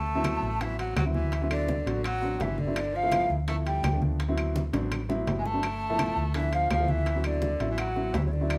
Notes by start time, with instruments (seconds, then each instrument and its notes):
Already playing: fingered electric bass D2, baritone saxophone A3, flute A5
0.07 high conga
0.15 upright piano F#3 B3 C4 E4
0.24 high bongo, high conga, high timbale, low timbale, claves
0.42 fingered electric bass A1, high bongo, high conga
0.60 baritone saxophone E3, upright piano F#3 B3 C4 F#4, flute E5, high bongo, high conga, high timbale
0.78 baritone saxophone F#3, flute F#5, high bongo, high conga, high timbale
0.96 fingered electric bass D2, baritone saxophone F#3, flute F#5, high bongo, low bongo, high conga, high timbale, low timbale, claves
1.05 upright piano F#3 B3 C4 E4
1.14 baritone saxophone E3, flute E5, high bongo, high conga
1.32 high bongo, high conga, high timbale
1.42 upright piano F#3 B3 C4 E4
1.50 baritone saxophone D3, flute D5, high conga, high timbale, claves
1.68 high bongo, high conga, low timbale
1.86 fingered electric bass A1, upright piano F#3 B3 C4 F#4, high bongo, high conga, high timbale
2.04 baritone saxophone F#3, flute F#5, high bongo, high conga, high timbale, claves
2.22 upright piano F#3 B3 C4 D4, high bongo, high conga
2.40 fingered electric bass G1, baritone saxophone E3, flute E5, high bongo, low bongo, high conga, high timbale, low timbale
2.58 baritone saxophone D3, flute D5, high bongo, high conga
2.67 upright piano F#3 B3 C4 E4
2.76 high bongo, high conga, high timbale, claves
2.94 baritone saxophone F3, flute F5, high conga
3.03 upright piano F3 A3 B3 E4
3.11 high bongo, high conga, high timbale, low timbale, claves
3.30 fingered electric bass D2, high bongo, high conga
3.48 upright piano F3 A3 B3 E4, baritone saxophone A3, flute A5, high bongo, high conga, high timbale
3.66 baritone saxophone G3, flute G5, high bongo, high conga, high timbale
3.83 fingered electric bass D2, high bongo, low bongo, high conga, high timbale, low timbale, claves
3.92 upright piano F3 A3 B3 D4
4.02 high bongo, high conga
4.20 high bongo, high conga, high timbale
4.28 upright piano F#3 B3 C4 E4
4.38 high conga, high timbale, claves
4.55 high bongo, high conga, low timbale
4.73 fingered electric bass A1, upright piano F#3 B3 C4 D4, high bongo, high conga, high timbale
4.91 low bongo, high conga, high timbale, claves
5.09 upright piano F#3 B3 C4 E4, low bongo, high conga
5.27 fingered electric bass G1, high conga, high timbale, low timbale
5.38 baritone saxophone G#3, flute G#5
5.45 baritone saxophone A3, flute A5, low bongo
5.53 upright piano F#3 B3 C4 D4
5.63 high bongo, high conga, high timbale, claves
5.81 high conga
5.90 upright piano F3 A3 B3 E4
5.99 high bongo, high conga, high timbale, low timbale, claves
6.16 fingered electric bass D2, high bongo, high conga
6.34 baritone saxophone E3, upright piano F3 A3 B3 D4, flute E5, high bongo, high conga, high timbale
6.53 baritone saxophone F3, flute F5, high bongo, high conga, high timbale
6.70 fingered electric bass D2, baritone saxophone F3, flute F5, high bongo, low bongo, high conga, high timbale, low timbale, claves
6.80 upright piano F3 A3 B3 E4
6.88 baritone saxophone E3, flute E5, high bongo, high conga
7.06 high bongo, high timbale
7.15 upright piano F#3 B3 C4 E4
7.24 baritone saxophone D3, flute D5, high conga, high timbale, claves
7.42 high bongo, high conga, low timbale
7.60 fingered electric bass A1, upright piano F#3 B3 C4 E4, high bongo, high conga, high timbale
7.71 baritone saxophone E3, flute E5
7.78 baritone saxophone F#3, flute F#5, high bongo, high conga, high timbale, claves
7.96 upright piano F#3 B3 C4 E4, high bongo, high conga
8.14 fingered electric bass D2, baritone saxophone E3, flute E5, high bongo, low bongo, high conga, high timbale, low timbale
8.25 baritone saxophone C#3, flute C#5
8.31 baritone saxophone D3, flute D5, high bongo
8.41 upright piano F#3 B3 C4 E4
8.50 high bongo, high timbale, claves